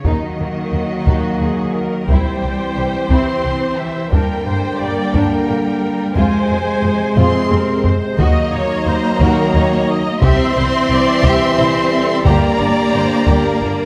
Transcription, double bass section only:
0.05 0.13 D#2 medium
0.39 0.47 D#2 soft
0.72 0.80 D#2 soft
1.07 1.15 D#2 medium
1.41 1.49 D#2 soft
2.09 2.17 C2 medium
2.43 2.51 C2 soft
2.77 2.85 C2 soft
3.10 3.18 C2 medium
3.45 3.53 C2 soft
4.12 4.20 G2 medium
4.46 4.54 G2 soft
4.80 4.88 G2 soft
5.14 5.22 G2 medium
5.48 5.56 G2 soft
6.15 6.23 F2 medium
6.49 6.57 F2 soft
6.83 6.91 F2 medium
7.17 7.25 F2 medium
7.51 7.59 F2 soft
8.18 8.26 D#2 medium
8.53 8.61 D#2 soft
8.87 8.95 D#2 medium
9.21 9.29 D#2 medium
9.55 9.63 D#2 medium
10.22 10.30 C2 medium
10.57 10.65 C2 medium
10.90 10.98 C2 medium
11.24 11.32 C2 medium
11.59 11.67 C2 medium
12.26 12.34 G1 medium
12.60 12.68 G1 soft
12.93 13.01 G1 medium
13.27 13.35 G1 medium
13.61 13.69 G1 medium

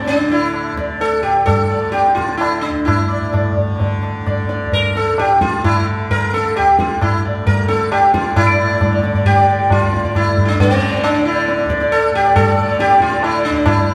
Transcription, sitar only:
0.07 0.31 D4 medium
0.32 0.75 E4 medium
0.78 0.99 D5 soft
1.01 1.22 A4 loud
1.23 1.45 G4 medium
1.46 1.91 A4 medium
1.70 1.92 D5 soft
1.92 2.14 G4 medium
2.15 2.37 F4 medium
2.37 2.63 E4 medium
2.61 2.87 D4 medium
2.85 3.52 E4 medium
3.09 3.31 D5 soft
3.33 3.55 D5 soft
4.27 4.48 D5 soft
4.49 4.71 D5 soft
4.73 4.97 A#4 medium
4.97 5.19 A4 medium
5.19 5.41 G4 medium
5.42 5.63 F4 medium
5.64 5.86 E4 medium
6.11 6.33 A#4 loud
6.34 6.56 A4 medium
6.57 6.79 G4 medium
6.80 7.00 F4 medium
7.02 7.23 E4 medium
7.25 7.46 D5 soft
7.47 7.68 A#4 medium
7.68 7.91 A4 medium
7.92 8.13 G4 medium
8.14 8.36 F4 medium
8.36 9.00 E4 medium
8.36 8.48 D5 soft
8.49 8.58 D5 soft
8.59 8.68 D5 soft
8.70 8.79 D5 soft
8.81 8.91 D5 soft
8.92 9.02 D5 soft
9.04 9.14 D5 soft
9.15 9.36 D5 soft
9.26 9.72 G4 loud
9.37 9.47 D5 soft
9.48 9.69 D5 soft
9.72 10.16 F4 loud
9.83 9.92 D5 soft
9.93 10.03 D5 soft
10.05 10.25 D5 soft
10.16 10.44 E4 medium
10.45 10.59 D4 medium
10.45 10.48 E4 medium
10.60 11.03 C4 medium
10.70 10.79 D5 soft
10.80 11.02 D5 soft
11.03 11.26 D4 loud
11.14 11.35 D5 soft
11.25 11.67 E4 medium
11.36 11.45 D5 soft
11.47 11.68 D5 soft
11.69 11.79 D5 soft
11.80 12.01 D5 soft
11.92 12.15 A4 loud
12.15 12.35 G4 loud
12.25 12.45 D5 soft
12.36 12.80 A4 loud
12.48 12.57 D5 soft
12.58 12.68 D5 soft
12.69 12.89 D5 soft
12.80 13.01 G4 loud
12.91 13.11 D5 soft
13.02 13.22 F4 medium
13.12 13.32 D5 soft
13.24 13.46 E4 medium
13.35 13.54 D5 soft
13.45 13.67 D4 medium
13.55 13.75 D5 soft
13.66 13.94 E4 medium
13.77 13.86 D5 soft
13.87 13.94 D5 soft

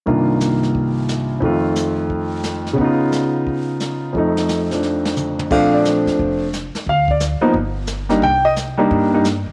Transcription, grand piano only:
0.06 1.42 C2 medium
0.06 1.42 G2 soft
0.06 1.40 D#3 soft
0.06 1.42 A#3 soft
0.06 1.43 D4 soft
0.06 1.43 F4 medium
1.40 2.77 F2 medium
1.40 2.78 D#3 soft
1.40 2.79 A3 soft
1.45 2.80 F4 medium
2.73 4.12 C#3 medium
2.73 4.13 B3 medium
2.81 4.15 D#4 medium
2.81 4.17 F4 medium
4.13 5.49 F2 soft
4.13 4.69 F3 soft
4.13 5.50 A3 soft
4.18 5.52 D#4 medium
4.71 5.50 F3 soft
4.71 5.50 D4 soft
5.51 6.45 F3 medium
5.51 6.45 A3 medium
5.51 6.45 C4 medium
5.51 6.46 D4 medium
5.51 5.72 F5 medium
5.74 5.85 D5 soft
6.89 7.09 F5 medium
7.11 7.21 D5 medium
7.41 7.53 F3 medium
7.41 7.53 A#3 medium
7.41 7.53 B3 medium
7.41 7.53 D#4 medium
8.09 8.21 G3 medium
8.09 8.21 A#3 medium
8.09 8.21 D4 medium
8.09 8.21 D#4 medium
8.23 8.44 G5 medium
8.45 8.52 D#5 medium
8.77 9.09 G3 medium
8.77 9.10 A#3 medium
8.77 9.10 D4 medium
8.77 9.10 D#4 medium
9.13 9.24 G3 medium
9.13 9.24 A#3 medium
9.13 9.24 D4 medium
9.13 9.24 D#4 medium

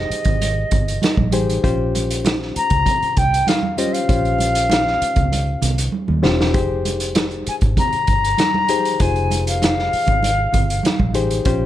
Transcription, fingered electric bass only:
0.10 muted fingered electric bass stroke soft
0.25 0.63 G#1 medium
0.72 0.97 G1 medium
1.17 1.33 A#1 medium
1.33 1.58 A1 medium
1.64 2.52 A#1 medium
2.56 muted fingered electric bass stroke soft
2.71 2.84 C#2 medium
3.03 muted fingered electric bass stroke soft
3.17 3.42 C2 medium
4.09 4.98 A#1 loud
5.02 muted fingered electric bass stroke soft
5.17 5.54 C#2 medium
5.62 5.88 C2 medium
6.09 6.25 D#2 medium
6.24 6.55 E1 medium
6.55 7.43 F1 medium
7.47 muted fingered electric bass stroke soft
7.62 7.75 G#1 medium
7.93 muted fingered electric bass stroke soft
8.08 8.33 G1 medium
9.00 9.88 F1 medium
9.93 muted fingered electric bass stroke soft
10.08 10.45 G#1 medium
10.54 10.79 G1 medium
11.00 11.16 A#1 medium
11.16 11.41 A1 medium
11.46 11.66 A#1 medium

